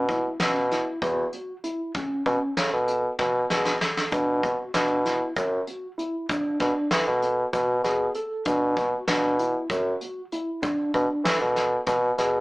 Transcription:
Already playing: B2
0.09 E4, kick, closed hi-hat
0.40 B2 C#4, snare, closed hi-hat
0.71 E4, snare, closed hi-hat
1.01 E2 F#4, kick, closed hi-hat
1.33 closed hi-hat
1.64 E4, closed hi-hat
1.94 C#4, kick, closed hi-hat
2.26 B2 C#4, kick, closed hi-hat
2.57 C#3 A4, snare, closed hi-hat
2.73 B2
2.88 closed hi-hat
3.19 B2 F#4, kick, snare
3.50 B2 G#4, snare
3.65 snare
3.81 A4, snare
3.97 snare
4.12 B2 D4, kick, closed hi-hat, shaker
4.43 F#4, kick, closed hi-hat
4.74 B2 D4, snare, closed hi-hat
5.05 E4, snare, closed hi-hat
5.36 F#2 F#4, kick, closed hi-hat, shaker
5.67 closed hi-hat
5.98 E4, closed hi-hat, shaker
6.29 D4, kick, closed hi-hat, shaker
6.60 B2 D4, kick, snare, closed hi-hat
6.91 E3 A4, snare, closed hi-hat
7.07 B2
7.22 closed hi-hat
7.53 B2 F#4, kick, closed hi-hat, shaker
7.83 B2 G#4, snare, closed hi-hat
8.14 A4, closed hi-hat, shaker
8.45 B2 D4, kick, closed hi-hat, shaker
8.76 F#4, kick, closed hi-hat
9.08 B2 D4, snare, closed hi-hat, shaker
9.39 E4, closed hi-hat
9.70 F#2 F#4, kick, closed hi-hat, shaker
10.01 closed hi-hat
10.32 E4, closed hi-hat, shaker
10.62 D4, kick, closed hi-hat, shaker
10.94 B2 D4, kick, closed hi-hat
11.24 E3 A4, snare, closed hi-hat
11.41 B2
11.56 snare, closed hi-hat
11.87 B2 F#4, kick, snare, closed hi-hat, shaker
12.18 B2 G#4, snare, closed hi-hat, shaker

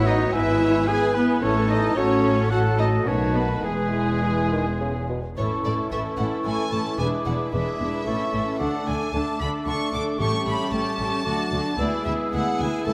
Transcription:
Already playing: A1 A2 F#3 B3 F#4 B4 C#5 F#5
0.06 D#4 D#5
0.33 G#1 G#2 E3 B3 E4 B4 E5 G#5
0.60 C#5
0.88 E3 B3 E4 G#4 B4 G#5
1.15 B3 B4
1.42 A1 A2 E3 A3 C#4 E4 A4 C#5 A5
1.69 D#4 D#5
1.96 A1 A2 F#3 A3 C#4 F#4 A4 C#5 A5
2.24 A4
2.50 F#3 A3 F#4 A4 F#5 A5
2.77 D#4 D#5
3.05 B1 B2 D#3 A3 C#4 D#4 F#4 B4 C#5 A5
3.34 B3 B4
3.63 E1 E2 E3 G#3 E4 G#4 B4 G#5
4.22 E3
4.52 D#3
4.80 C#3
5.09 B2
5.37 A1 A2 E3 A3 C#4 E4 A4 C#5 C#6
5.64 A1 A2 E3 C#4 E4 A4 D5
5.91 A1 A2 E3 C#4 E4 A4 E5 C#6
6.18 A1 A2 E3 C#4 E4 A4 F#5
6.45 A1 A2 E3 C#4 E4 A4 G#5
6.71 A1 A2 E3 C#4 E4 A4 A5
6.98 E1 E2 E3 G#3 D4 E4 G#4 B4 G#5 D6
7.26 E1 E2 G#3 D4 E4 B4 F#5
7.52 E1 E2 E3 G#3 D4 E4 G#4 B4 E5 D6
7.79 E1 E2 G#3 D4 E4 B4
8.06 A1 A2 E3 A3 C#4 E4 A4 C#6
8.32 A1 A2 A3 C#4 E4 A4
8.59 D2 D3 A3 D4 A4 F#5 D6
8.86 D2 D3 A3 D4 A4 G#5
9.13 D2 D3 A3 D4 A4 A5 D6
9.40 D2 D3 A3 D4 A4 B5
9.66 D2 D3 A3 D4 A4 C#6
9.92 D2 D3 A3 D4 A4 D6
10.18 A1 A2 G3 A3 C#4 G4 A4 C#6
10.45 A1 A2 A3 C#4 G4 A4 B5
10.72 A1 A2 A3 C#4 G4 A4 A5 C#6
10.98 A1 A2 A3 C#4 G4 A4
11.24 D2 F#3 A3 D4 F#4 A4 D6
11.52 D2 A3 D4 F#4 A4
11.77 D2 G#3 B3 E4 G#4 D5 E6
12.04 D2 B3 E4 G#4 E5
12.31 D2 B3 E4 G#4 F#5
12.58 D2 B3 E4 G#4 G#5
12.85 C#2 A3 E4 A4 A5 E6

